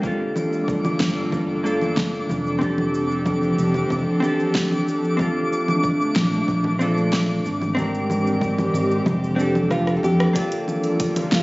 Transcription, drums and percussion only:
0.03 kick loud
0.03 cabasa soft
0.36 low conga medium
0.36 cabasa medium
0.53 cabasa soft
0.68 kick loud
0.68 cabasa soft
0.85 low conga medium
0.85 cabasa soft
1.00 snare medium
1.00 cabasa medium
1.17 cabasa soft
1.32 kick loud
1.32 low conga medium
1.32 cabasa soft
1.66 cabasa medium
1.81 low conga medium
1.81 cabasa soft
1.97 kick loud
1.97 snare medium
1.97 cabasa soft
2.15 cabasa soft
2.30 low conga medium
2.30 cabasa medium
2.47 cabasa soft
2.61 kick loud
2.61 cabasa soft
2.78 low conga medium
2.94 cabasa medium
3.11 cabasa soft
3.26 kick loud
3.26 low conga medium
3.26 cabasa soft
3.43 cabasa soft
3.59 cabasa medium
3.74 low conga medium
3.74 cabasa soft
3.90 kick loud
3.90 cabasa soft
4.23 low conga medium
4.23 cabasa medium
4.40 cabasa soft
4.55 kick loud
4.55 snare medium
4.55 cabasa soft
4.71 low conga medium
4.71 cabasa soft
4.88 cabasa medium
5.05 cabasa soft
5.19 kick loud
5.19 low conga medium
5.19 cabasa soft
5.53 cabasa medium
5.68 low conga medium
5.68 cabasa soft
5.84 kick loud
5.84 cabasa soft
6.01 cabasa soft
6.16 snare medium
6.16 low conga medium
6.16 cabasa medium
6.33 cabasa soft
6.48 kick loud
6.48 cabasa soft
6.64 low conga medium
6.81 cabasa medium
6.98 cabasa soft
7.12 kick medium
7.12 snare medium
7.12 low conga medium
7.12 cabasa soft
7.30 cabasa soft
7.46 cabasa medium
7.62 low conga medium
7.62 cabasa soft
7.77 kick medium
7.77 cabasa soft
7.95 cabasa soft
8.10 low conga medium
8.10 cabasa medium
8.27 cabasa soft
8.41 kick loud
8.41 cabasa soft
8.58 low conga medium
8.58 cabasa soft
8.75 cabasa medium
8.91 cabasa soft
9.06 kick medium
9.06 low conga medium
9.06 cabasa soft
9.24 cabasa soft
9.40 cabasa medium
9.55 low conga medium
9.55 cabasa soft
9.71 kick medium
9.71 cross-stick medium
9.71 cabasa soft
9.87 cross-stick medium
9.87 cabasa soft
10.03 low conga medium
10.03 cabasa medium
10.20 cross-stick medium
10.20 cabasa soft
10.35 kick loud
10.35 closed hi-hat medium
10.35 cabasa soft
10.52 closed hi-hat soft
10.68 low conga medium
10.68 cabasa medium
10.84 closed hi-hat soft
10.84 cabasa soft
11.00 kick loud
11.00 closed hi-hat medium
11.00 cabasa soft
11.16 closed hi-hat soft
11.16 low conga medium
11.16 cabasa soft
11.32 snare medium
11.32 cabasa medium

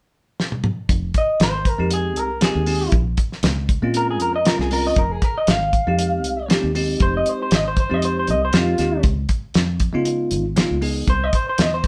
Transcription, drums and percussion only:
0.40 snare medium
0.52 high tom medium
0.64 mid tom medium
0.89 kick medium
0.89 closed hi-hat medium
1.14 kick medium
1.14 closed hi-hat medium
1.40 snare loud
1.40 closed hi-hat medium
1.65 kick medium
1.65 closed hi-hat medium
1.91 closed hi-hat medium
2.16 closed hi-hat medium
2.41 snare loud
2.41 closed hi-hat medium
2.66 open hi-hat medium
2.92 kick medium
2.92 closed hi-hat medium
3.17 kick medium
3.17 closed hi-hat medium
3.32 snare soft
3.43 snare loud
3.43 closed hi-hat medium
3.69 kick medium
3.69 closed hi-hat medium
3.94 closed hi-hat medium
4.20 closed hi-hat medium
4.45 snare loud
4.45 closed hi-hat medium
4.60 snare soft
4.71 open hi-hat medium
4.96 kick medium
4.96 closed hi-hat medium
5.22 kick medium
5.22 closed hi-hat medium
5.47 snare loud
5.47 closed hi-hat medium
5.73 kick medium
5.73 closed hi-hat medium
5.99 closed hi-hat medium
6.24 closed hi-hat medium
6.50 snare loud
6.50 closed hi-hat medium
6.75 open hi-hat medium
7.00 kick medium
7.00 closed hi-hat medium
7.26 closed hi-hat medium
7.51 snare loud
7.51 closed hi-hat medium
7.77 kick medium
7.77 closed hi-hat medium
8.02 closed hi-hat medium
8.27 closed hi-hat soft
8.53 snare loud
8.53 closed hi-hat medium
8.78 snare soft
8.78 closed hi-hat medium
9.03 kick medium
9.03 closed hi-hat medium
9.29 kick medium
9.29 closed hi-hat medium
9.54 snare loud
9.54 closed hi-hat medium
9.80 kick medium
9.80 closed hi-hat medium
10.05 closed hi-hat medium
10.31 closed hi-hat medium
10.57 snare loud
10.57 closed hi-hat medium
10.82 open hi-hat medium
11.08 kick medium
11.08 closed hi-hat medium
11.33 kick medium
11.33 closed hi-hat medium
11.58 snare loud
11.58 closed hi-hat medium
11.84 kick medium
11.84 closed hi-hat medium

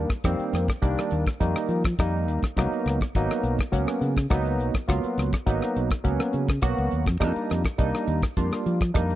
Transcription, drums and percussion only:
0.10 kick medium
0.10 cross-stick medium
0.24 kick medium
0.24 cross-stick medium
0.24 closed hi-hat medium
0.39 closed hi-hat soft
0.54 cross-stick medium
0.54 closed hi-hat medium
0.68 kick medium
0.68 cross-stick medium
0.68 closed hi-hat soft
0.82 kick medium
0.82 closed hi-hat medium
0.98 cross-stick medium
0.98 closed hi-hat soft
1.11 closed hi-hat medium
1.26 kick medium
1.26 cross-stick medium
1.26 closed hi-hat soft
1.41 kick medium
1.41 closed hi-hat medium
1.56 cross-stick medium
1.70 closed hi-hat soft
1.84 kick medium
1.84 cross-stick medium
1.84 closed hi-hat soft
1.99 kick loud
1.99 cross-stick medium
1.99 closed hi-hat medium
2.28 closed hi-hat medium
2.43 kick medium
2.43 cross-stick medium
2.57 kick medium
2.57 cross-stick medium
2.57 closed hi-hat medium
2.72 closed hi-hat soft
2.87 cross-stick medium
2.87 closed hi-hat medium
3.01 kick medium
3.01 cross-stick medium
3.01 closed hi-hat soft
3.15 kick medium
3.15 closed hi-hat medium
3.31 cross-stick medium
3.44 closed hi-hat medium
3.59 kick medium
3.59 cross-stick medium
3.59 closed hi-hat soft
3.73 kick medium
3.73 closed hi-hat medium
3.87 cross-stick medium
3.87 closed hi-hat soft
4.02 closed hi-hat medium
4.16 kick medium
4.16 cross-stick medium
4.16 closed hi-hat soft
4.30 kick loud
4.30 cross-stick medium
4.30 closed hi-hat medium
4.45 closed hi-hat soft
4.60 closed hi-hat medium
4.74 kick medium
4.74 cross-stick medium
4.89 kick medium
4.89 cross-stick medium
4.89 closed hi-hat medium
5.04 closed hi-hat soft
5.18 cross-stick medium
5.18 closed hi-hat medium
5.33 kick medium
5.33 cross-stick medium
5.33 closed hi-hat soft
5.47 kick medium
5.47 closed hi-hat medium
5.61 cross-stick medium
5.61 closed hi-hat soft
5.76 closed hi-hat medium
5.90 kick medium
5.90 cross-stick medium
5.90 closed hi-hat soft
6.05 kick medium
6.05 closed hi-hat medium
6.20 cross-stick medium
6.33 closed hi-hat soft
6.49 kick medium
6.49 cross-stick medium
6.49 closed hi-hat soft
6.62 kick loud
6.62 cross-stick medium
6.62 closed hi-hat medium
6.91 closed hi-hat medium
7.06 kick medium
7.06 cross-stick medium
7.21 kick medium
7.21 cross-stick medium
7.21 closed hi-hat medium
7.36 closed hi-hat soft
7.50 cross-stick medium
7.50 closed hi-hat medium
7.64 kick medium
7.64 cross-stick medium
7.64 closed hi-hat soft
7.78 kick loud
7.78 closed hi-hat medium
7.95 cross-stick medium
8.07 closed hi-hat medium
8.22 kick medium
8.22 cross-stick medium
8.22 closed hi-hat soft
8.37 kick medium
8.37 closed hi-hat medium
8.52 cross-stick medium
8.52 closed hi-hat soft
8.66 closed hi-hat medium
8.81 kick medium
8.81 cross-stick medium
8.81 closed hi-hat soft
8.95 kick loud
8.95 cross-stick medium
8.95 closed hi-hat medium
9.10 closed hi-hat soft

